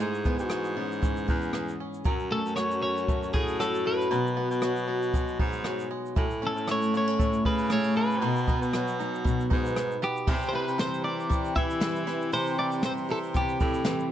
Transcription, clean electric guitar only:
Already playing: G#4
0.45 F#4
2.32 A4
2.56 C#5
2.83 C#5
3.34 G#4
3.60 A4
3.87 B4
6.47 A4
6.71 C#5
6.97 C#5
7.46 B4
7.72 C#5
7.97 B4
10.04 G4
10.49 C5
10.55 B4
10.81 C5
11.04 D5
11.56 E5
12.34 C5
12.59 D5
12.86 C5
13.12 A4
13.37 G4

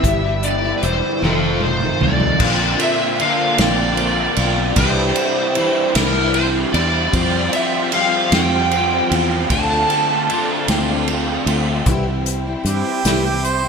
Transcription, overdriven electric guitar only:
0.04 G2
0.43 D3
0.84 E3
1.23 F2
1.63 D#3
2.01 A3
2.40 A#2 D3 A#3 D4 F4
2.79 A#3 D4 F4
3.19 D3 A#3 D4 F4
3.58 A#3 D4 F4
3.98 D3 A#3 D4 F4
4.37 A#3 D4 F4
4.76 C3 E3 G3 C4 E4
5.16 G3 C4 E4
5.56 E3 G3 C4 E4
5.95 G3 C4 E4
6.34 E3 G3 C4 E4
6.73 G3 C4 E4
7.13 F3 G3 C4 F4
7.53 G3 C4 F4
7.91 F3 G3 C4 F4
8.31 G3 C4 F4
8.70 F3 G3 C4 F4
9.09 G3 C4 F4
9.49 D3 A3 D4 F4
9.89 A3 D4 F4
10.28 D3 A3 D4 F4
10.67 A3 D4 F4
11.07 D3 A3 D4 F4
11.47 A3 D4 F4

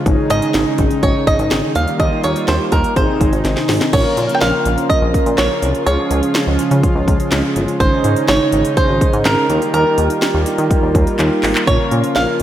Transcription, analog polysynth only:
0.06 C#4 D#4 G#4
1.75 A#3 D#4 G4
2.96 C4 D#4 G#4
3.93 C#4 F4 A#4
5.87 C#4 F4 G#4
7.80 C#4 D#4 G#4
9.49 D#4 G4 A#4
11.67 C#4 F4 A#4

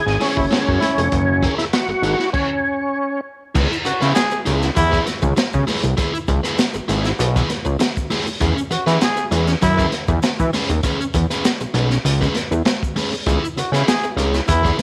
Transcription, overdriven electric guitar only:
0.20 E4 G#4 C#5
0.36 muted overdriven electric guitar stroke
0.51 E4 G#4 C#5
0.82 muted overdriven electric guitar stroke
0.98 muted overdriven electric guitar stroke
1.43 E4 G#4 A#4
1.89 muted overdriven electric guitar stroke
2.03 E4 G#4 A#4
2.19 muted overdriven electric guitar stroke
3.55 E4 G#4 B4
3.72 muted overdriven electric guitar stroke
3.85 muted overdriven electric guitar stroke
4.01 E4 G#4 B4
4.16 muted overdriven electric guitar stroke
4.32 muted overdriven electric guitar stroke
4.46 E4 G#4 B4
4.62 muted overdriven electric guitar stroke
4.75 muted overdriven electric guitar stroke
4.91 E4 G#4 B4
5.06 muted overdriven electric guitar stroke
5.22 muted overdriven electric guitar stroke
5.36 muted overdriven electric guitar stroke
5.67 E4 G#4 B4
5.83 muted overdriven electric guitar stroke
5.97 E4 G#4 B4
6.13 muted overdriven electric guitar stroke
6.28 muted overdriven electric guitar stroke
6.43 E4 G#4 B4
6.57 muted overdriven electric guitar stroke
6.74 muted overdriven electric guitar stroke
6.88 E4 G#4 B4
7.05 muted overdriven electric guitar stroke
7.20 muted overdriven electric guitar stroke
7.36 E4 G#4 B4
7.50 muted overdriven electric guitar stroke
7.65 muted overdriven electric guitar stroke
7.79 muted overdriven electric guitar stroke
8.10 E4 G#4 B4
8.26 muted overdriven electric guitar stroke
8.41 C#4 G#4 B4
8.56 muted overdriven electric guitar stroke
8.71 muted overdriven electric guitar stroke
8.86 C#4 G#4 B4
9.01 muted overdriven electric guitar stroke
9.17 muted overdriven electric guitar stroke
9.31 C#4 G#4 B4
9.48 muted overdriven electric guitar stroke
9.62 muted overdriven electric guitar stroke
9.78 C#4 G#4 B4
9.92 muted overdriven electric guitar stroke
10.09 muted overdriven electric guitar stroke
10.23 muted overdriven electric guitar stroke
10.53 C#4 G#4 B4
10.70 muted overdriven electric guitar stroke
10.83 C#4 G#4 B4
10.99 muted overdriven electric guitar stroke
11.15 muted overdriven electric guitar stroke
11.31 C#4 G#4 B4
11.45 muted overdriven electric guitar stroke
11.61 muted overdriven electric guitar stroke
11.74 C#4 G#4 B4
11.91 muted overdriven electric guitar stroke
12.05 muted overdriven electric guitar stroke
12.21 C#4 G#4 B4
12.36 muted overdriven electric guitar stroke
12.52 muted overdriven electric guitar stroke
12.65 muted overdriven electric guitar stroke
12.96 C#4 G#4 B4
13.12 muted overdriven electric guitar stroke
13.27 E4 G#4 B4
13.43 muted overdriven electric guitar stroke
13.57 muted overdriven electric guitar stroke
13.73 E4 G#4 B4
13.88 muted overdriven electric guitar stroke
14.04 muted overdriven electric guitar stroke
14.17 E4 G#4 B4
14.34 muted overdriven electric guitar stroke
14.48 muted overdriven electric guitar stroke
14.63 E4 G#4 B4
14.78 muted overdriven electric guitar stroke

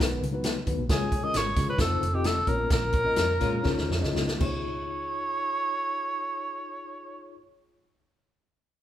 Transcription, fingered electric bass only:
0.00 B1
0.23 C#2
0.67 D#2
0.78 B1
0.89 C#2
1.34 G#1
1.56 C#3
1.78 F1
2.01 F1
2.47 A#1
2.70 A#1
3.17 F2
3.42 A#2
3.65 C#2
3.77 D#2
3.90 F2
4.02 C#2
4.16 C#2
4.40 C#2

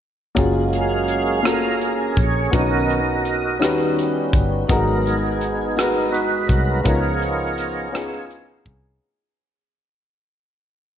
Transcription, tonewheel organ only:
0.36 F#3 G#3 A#3
0.73 C#4 G#4 F5
1.47 C#4 G#4 A#4
2.18 C#5
2.53 D#3 B3 C#4 F#4 A#4 D#5
3.60 G3 B3 C#4
4.67 F#3 B3 A#4
5.06 B3 D#4 G#4
5.77 A#4
6.05 A#4
6.12 D#4 F#4 B4
6.47 F#3 B3 A#4
6.84 F3 B3 D#4 F4 G#4 A#4 C#5

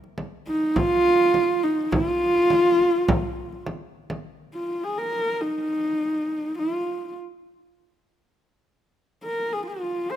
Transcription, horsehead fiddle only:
0.47 D#4
0.77 F4
1.63 D#4
1.92 F4
4.54 F4
4.84 G#4
4.98 A#4
5.41 D#4
6.59 F4
9.23 A#4
9.53 G#4
9.67 F4
10.11 C5

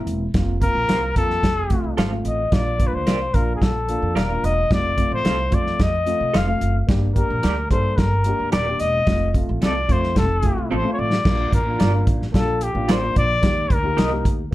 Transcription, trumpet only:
0.63 A#4
1.18 A4
2.27 D#5
2.53 D5
2.87 B4
2.95 C5
3.35 A#4
3.56 G#4
3.62 A4
4.16 A#4
4.45 D#5
4.73 D5
5.14 C5
5.54 D5
5.83 D#5
6.37 F5
7.16 A#4
7.71 C5
7.99 A#4
8.52 D5
8.80 D#5
9.65 D5
9.92 C5
10.18 A4
10.73 C5
10.93 C#5
10.99 D5
11.55 A#4
12.35 A4
12.63 G4
12.91 C5
13.18 D5
13.73 A#4

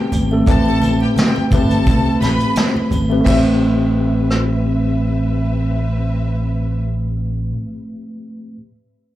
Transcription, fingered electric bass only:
0.13 G#1
0.48 A1
1.38 muted fingered electric bass stroke
1.52 G1
1.87 C2
2.22 A1
2.92 G#1
3.27 A1

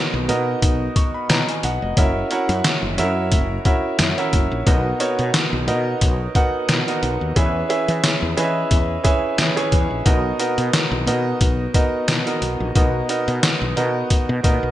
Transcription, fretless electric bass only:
0.14 B1
0.29 B2
0.62 B1
1.30 B2
1.64 B1
1.82 F1
1.97 F#1
2.49 F#2
2.82 F#1
2.98 F#2
3.32 F#1
4.00 F#2
4.33 F#1
4.52 A#1
4.67 B1
5.19 B2
5.53 B1
5.68 B2
6.02 B1
6.69 B2
7.03 B1
7.21 D#2
7.36 E2
7.88 E3
8.22 E2
8.38 E3
8.71 E2
9.38 E3
9.72 E2
9.91 A#1
10.06 B1
10.58 B2
10.91 B1
11.07 B2
11.41 B1
12.08 B2
12.42 B1
12.60 A#1
12.76 B1
13.28 B2
13.62 B1
13.77 B2
14.29 B2
14.44 A#2
14.63 B1

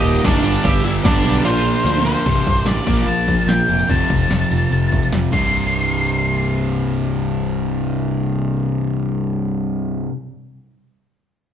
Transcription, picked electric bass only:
0.03 D#1
0.24 F#1
0.43 G1
0.65 G1
0.84 G1
1.05 G1
1.24 B1
1.44 A#1
1.85 D2
2.26 C1
2.47 C1
2.66 A1
2.87 A#1
3.06 A#1
3.47 A#1
3.69 F1
3.89 F1
4.10 F1
4.30 F1
4.52 F1
4.71 F1
5.13 F1
5.33 C1

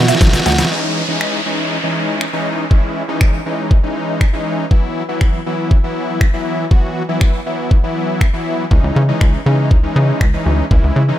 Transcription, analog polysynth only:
Already playing: E3 F#3 B3 E4 F#4
0.58 E3 F#3 B3 E4 F#4
0.71 E3 G#3 C#4 D#4
1.08 E3 G#3 C#4 D#4
1.46 E3 G#3 C#4 D#4
1.83 E3 G#3 C#4 D#4
2.33 E3 G#3 C#4 D#4
2.71 E3 G#3 C#4 E4
3.08 E3 G#3 C#4 D#4
3.46 E3 G#3 C#4 D#4
3.83 E3 G#3 C#4 D#4
4.33 E3 G#3 C#4 D#4
4.71 E3 F#3 B3 E4
5.09 E3 F#3 B3 E4
5.46 E3 F#3 B3 E4
5.84 E3 F#3 B3 E4
6.34 E3 F#3 B3 E4
6.71 E3 F#3 B3 F#4
7.09 E3 F#3 B3 E4
7.46 E3 F#3 B3 E4
7.83 E3 F#3 B3 E4
8.33 E3 F#3 B3 E4
8.71 E3 G#3 C#4 D#4
9.08 E3 G#3 C#4 D#4
9.46 E3 G#3 C#4 D#4
9.83 E3 G#3 C#4 D#4
10.34 E3 G#3 C#4 D#4
10.71 E3 G#3 C#4 E4
11.08 E3 G#3 C#4 D#4

